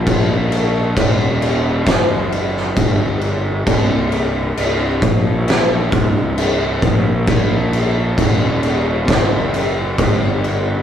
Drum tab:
CC |x-x-x-x-x-x-x-x-|x-x-x-x-x-x-x-x-|x-x-x-x-x-x-x-x-|
SD |--------o--o----|--------o-------|--------o-------|
BD |o---o---o---o---|o-----o---o---o-|o---o---o---o---|